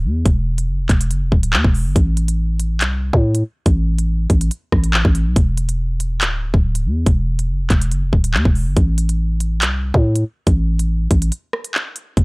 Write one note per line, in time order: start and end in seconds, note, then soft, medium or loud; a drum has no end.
0.04 0.24 E2 loud
0.26 0.70 E1 loud
0.26 kick loud
0.26 closed hi-hat medium
0.58 closed hi-hat medium
0.68 0.81 F#1 loud
0.79 0.89 E1 loud
0.89 1.12 E1 loud
0.89 kick loud
0.89 clap medium
0.89 closed hi-hat medium
1.01 closed hi-hat loud
1.11 1.23 F#1 loud
1.11 closed hi-hat medium
1.22 1.31 E1 loud
1.32 1.55 D1 loud
1.32 kick medium
1.43 closed hi-hat medium
1.53 1.64 E2 loud
1.53 clap loud
1.64 1.87 E1 loud
1.64 kick loud
1.75 open hi-hat medium
1.86 1.95 G1 loud
1.96 2.82 A1 loud
1.96 kick loud
1.96 closed hi-hat medium
2.17 closed hi-hat medium
2.28 closed hi-hat medium
2.60 closed hi-hat medium
2.81 3.12 C2 loud
2.81 clap loud
2.81 closed hi-hat medium
3.13 3.43 A2 loud
3.13 kick loud
3.35 closed hi-hat medium
3.66 4.27 A1 loud
3.66 kick loud
3.66 closed hi-hat medium
3.99 closed hi-hat medium
4.30 4.50 A1 loud
4.30 kick loud
4.30 closed hi-hat medium
4.41 closed hi-hat loud
4.51 closed hi-hat medium
4.72 5.04 A1 loud
4.72 kick medium
4.72 cross-stick medium
4.84 closed hi-hat medium
4.94 clap loud
5.05 5.28 A1 loud
5.05 kick loud
5.15 closed hi-hat medium
5.26 5.36 B1 loud
5.36 6.23 E1 loud
5.36 kick loud
5.36 closed hi-hat medium
5.57 closed hi-hat medium
5.69 closed hi-hat medium
6.00 closed hi-hat medium
6.21 6.52 D1 loud
6.21 clap loud
6.21 closed hi-hat medium
6.54 6.87 D1 loud
6.54 kick loud
6.75 closed hi-hat medium
6.85 7.05 E2 loud
7.06 7.50 E1 loud
7.06 kick loud
7.06 closed hi-hat medium
7.39 closed hi-hat medium
7.49 7.62 F#1 loud
7.60 7.70 E1 loud
7.70 7.93 E1 loud
7.70 kick loud
7.70 clap medium
7.70 closed hi-hat medium
7.82 closed hi-hat loud
7.91 8.04 F#1 loud
7.91 closed hi-hat medium
8.03 8.12 E1 loud
8.13 8.36 D1 loud
8.13 kick medium
8.24 closed hi-hat medium
8.34 8.45 E2 loud
8.34 clap loud
8.45 8.68 E1 loud
8.45 kick loud
8.55 open hi-hat medium
8.67 8.76 G1 loud
8.77 9.63 A1 loud
8.77 kick loud
8.77 closed hi-hat medium
8.98 closed hi-hat medium
9.09 closed hi-hat medium
9.40 closed hi-hat medium
9.62 9.93 C2 loud
9.62 clap loud
9.62 closed hi-hat medium
9.94 10.24 A2 loud
9.94 kick loud
10.16 closed hi-hat medium
10.47 11.08 A1 loud
10.47 kick loud
10.47 closed hi-hat medium
10.79 closed hi-hat medium
11.11 11.31 A1 loud
11.11 kick loud
11.11 closed hi-hat medium
11.22 closed hi-hat medium
11.32 closed hi-hat medium
11.53 cross-stick medium
11.64 closed hi-hat medium
11.75 clap loud
11.96 closed hi-hat medium
12.17 12.24 E1 loud
12.17 kick loud
12.17 closed hi-hat medium